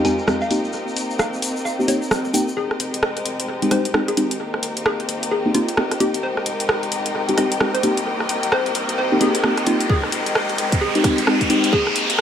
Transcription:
Already playing: violin section G#3 C4 D#4 G4, string section F4 A#4 D#5 G5
0.05 synth stab F2 G#3 C4 D#4 G4, synth pluck G#5, open hi-hat, shaker
0.18 shaker
0.28 synth stab F2 G#3 C4 D#4 G4, cross-stick, shaker
0.41 synth pluck F5, shaker
0.50 synth stab A#3 C4 D#4 G4, violin section A#3 C4, string section C4, open hi-hat, shaker
0.64 shaker
0.73 shaker
0.88 shaker
0.97 open hi-hat, shaker
1.10 shaker
1.19 synth pluck F5, cross-stick, shaker
1.33 shaker
1.42 open hi-hat, shaker
1.56 shaker
1.65 synth pluck F5, shaker
1.79 synth stab A#3 C4 D#4 G4, shaker
1.88 synth stab A#3 C4 D#4 G4, synth pluck C#5, open hi-hat, shaker
2.02 shaker
2.11 cross-stick, shaker
2.25 shaker
2.34 synth stab A#3 C4 D#4 G4, synth pluck G5, open hi-hat, shaker
2.48 shaker
2.57 sub bass F1, violin section G#3 C4 D#4 G4, synth pluck G#4, string section A#4, riser
2.71 cross-stick
2.79 sub bass F1, open hi-hat
2.94 sub bass F1, closed hi-hat
3.03 cross-stick
3.17 closed hi-hat
3.25 sub bass F1, open hi-hat
3.40 closed hi-hat
3.62 synth stab G#3 C4 D#4 G4, open hi-hat
3.71 sub bass C2, synth stab G#3 C4 D#4 G4, synth pluck C5, cross-stick, open hi-hat
3.85 closed hi-hat
3.94 synth stab G#3 C4 D#4 G4, cross-stick
4.08 sub bass F1, synth pluck G#4, closed hi-hat
4.17 sub bass G#1, synth stab G#3 C4 D#4 G4, open hi-hat
4.31 closed hi-hat
4.40 violin section A#3 C4
4.54 cross-stick
4.63 sub bass G#1, string section D#5, open hi-hat
4.77 sub bass G#1, closed hi-hat
4.83 synth pluck G#4, string section G5, cross-stick
5.00 closed hi-hat
5.08 sub bass G#1, open hi-hat
5.23 closed hi-hat
5.31 synth pluck G#4
5.46 synth stab A#3 C4 D#4 G4
5.54 synth stab A#3 C4 D#4 G4, synth pluck F4, open hi-hat
5.69 closed hi-hat
5.77 synth stab A#3 C4 D#4 G4, cross-stick
5.91 cross-stick, closed hi-hat
6.00 synth stab A#3 C4 D#4 G4, synth pluck G4, open hi-hat
6.14 sub bass G#1, closed hi-hat
6.23 sub bass F1, violin section G#3 C4, synth pluck C5
6.37 cross-stick
6.46 sub bass F1, open hi-hat
6.60 sub bass F1, closed hi-hat
6.69 cross-stick
6.83 closed hi-hat
6.92 sub bass F1, open hi-hat
7.06 closed hi-hat
7.29 synth stab G#3 C4 D#4 G4, open hi-hat
7.37 sub bass C2, synth stab G#3 C4 D#4 G4, synth pluck D#5, cross-stick, open hi-hat
7.52 closed hi-hat
7.60 synth stab G#3 C4 D#4 G4, cross-stick
7.74 sub bass F1, synth pluck C5, closed hi-hat
7.83 sub bass C2, violin section A#3, synth stab A#3 C4 D#4 G4, open hi-hat
7.97 closed hi-hat
8.20 cross-stick
8.29 sub bass C2, open hi-hat
8.43 sub bass C2, closed hi-hat
8.52 synth pluck C5, cross-stick
8.66 closed hi-hat
8.75 sub bass C2, open hi-hat
8.89 closed hi-hat
8.98 synth pluck C5
9.12 synth stab A#3 C4 D#4 G4
9.21 synth stab A#3 C4 D#4 G4, synth pluck G#4, open hi-hat
9.35 closed hi-hat
9.44 synth stab A#3 C4 D#4 G4, cross-stick
9.57 cross-stick, closed hi-hat
9.67 synth stab A#3 C4 D#4 G4, synth pluck F4, open hi-hat
9.80 sub bass C2, closed hi-hat
9.90 violin section G#3, synth pluck G#4, kick
10.03 cross-stick
10.12 sub bass F1, open hi-hat
10.26 sub bass F1, closed hi-hat
10.35 cross-stick
10.49 closed hi-hat
10.58 sub bass F1, open hi-hat
10.72 kick, closed hi-hat
10.81 synth pluck G#4
10.95 synth stab G#3 C4 D#4 G4, open hi-hat
11.04 sub bass C2, synth stab G#3 C4 D#4 G4, kick, cross-stick, open hi-hat
11.18 closed hi-hat
11.27 synth stab G#3 C4 D#4 G4, cross-stick
11.41 kick, closed hi-hat
11.50 sub bass G#1, synth stab G#3 C4 D#4 G4, open hi-hat
11.64 closed hi-hat
11.73 violin section A#3, synth pluck G#4, kick
11.87 cross-stick
11.96 sub bass G#1, open hi-hat
12.10 sub bass G#1, closed hi-hat

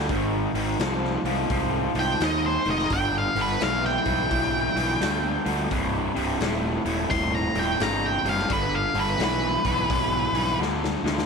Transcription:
Already playing: fingered electric bass D2, lead electric guitar G5
0.09 fingered electric bass G#1, overdriven electric guitar G#2 D#3, kick, open hi-hat
0.54 fingered electric bass G#1, overdriven electric guitar G#2 D#3, open hi-hat
0.79 fingered electric bass C2, overdriven electric guitar G#2 F3, snare, open hi-hat
1.04 snare
1.23 fingered electric bass C2, overdriven electric guitar G#2 F3, open hi-hat
1.50 fingered electric bass C2, overdriven electric guitar G#2 F3, kick, open hi-hat
1.95 fingered electric bass C2, overdriven electric guitar G#2 F3, open hi-hat
1.99 lead electric guitar G5
2.20 fingered electric bass D#2, overdriven electric guitar G#2 D#3, lead electric guitar D#5, snare, open hi-hat
2.46 lead electric guitar C5
2.65 fingered electric bass F1, overdriven electric guitar G#2 D#3, open hi-hat
2.70 lead electric guitar D#5
2.79 snare
2.90 fingered electric bass G1, overdriven electric guitar G2 D3, lead electric guitar G5, kick, open hi-hat
3.18 lead electric guitar F5
3.35 fingered electric bass G1, overdriven electric guitar G2 D3, open hi-hat
3.41 lead electric guitar B4
3.60 fingered electric bass B1, overdriven electric guitar G2 E3, lead electric guitar F5, snare, open hi-hat
3.84 lead electric guitar G5, snare
4.05 fingered electric bass B1, overdriven electric guitar G2 E3, kick, open hi-hat
4.31 fingered electric bass B1, overdriven electric guitar G2 E3, kick, open hi-hat
4.75 fingered electric bass B1, overdriven electric guitar G2 E3, open hi-hat
5.00 fingered electric bass D2, overdriven electric guitar G2 D3, snare, open hi-hat
5.45 fingered electric bass D2, overdriven electric guitar G2 D3, open hi-hat
5.70 fingered electric bass C1, overdriven electric guitar C2 G2, kick, open hi-hat
6.15 fingered electric bass C1, overdriven electric guitar C2 G2, open hi-hat
6.40 fingered electric bass D#1, overdriven electric guitar C2 A2, snare, open hi-hat
6.85 fingered electric bass D#1, overdriven electric guitar C2 A2, open hi-hat
7.10 fingered electric bass D#1, overdriven electric guitar C2 A2, lead electric guitar C6, kick, open hi-hat
7.35 lead electric guitar A#5
7.55 fingered electric bass D#1, overdriven electric guitar C2 A2, open hi-hat
7.59 lead electric guitar G5
7.79 fingered electric bass G1, overdriven electric guitar C2 G2, lead electric guitar A#5, snare, open hi-hat
8.06 lead electric guitar G5
8.23 fingered electric bass F#1, overdriven electric guitar C2 G2, open hi-hat
8.29 lead electric guitar F5
8.39 snare
8.49 fingered electric bass G1, overdriven electric guitar G2 D3, kick, open hi-hat
8.53 lead electric guitar B4
8.75 lead electric guitar F5
8.93 fingered electric bass G1, overdriven electric guitar G2 D3, open hi-hat
9.00 lead electric guitar B4
9.19 fingered electric bass B1, overdriven electric guitar G2 E3, snare, open hi-hat
9.24 lead electric guitar B4
9.64 fingered electric bass B1, overdriven electric guitar G2 E3, kick, open hi-hat
9.90 fingered electric bass B1, overdriven electric guitar G2 E3, kick, open hi-hat
10.33 fingered electric bass B1, overdriven electric guitar G2 E3, open hi-hat
10.58 fingered electric bass D2, overdriven electric guitar G2 D3, snare
10.84 snare
11.03 fingered electric bass D2, overdriven electric guitar G2 D3, snare
11.18 snare

